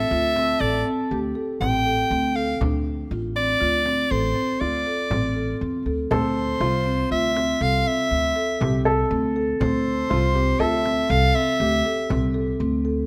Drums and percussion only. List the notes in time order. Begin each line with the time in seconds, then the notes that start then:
0.36 frame drum
0.61 frame drum
1.62 frame drum
2.61 frame drum
2.86 frame drum
3.86 frame drum
4.11 frame drum
4.37 frame drum
5.11 frame drum
5.37 frame drum
6.11 frame drum
7.36 frame drum
7.62 frame drum
8.61 frame drum
9.61 frame drum
10.86 frame drum
12.10 frame drum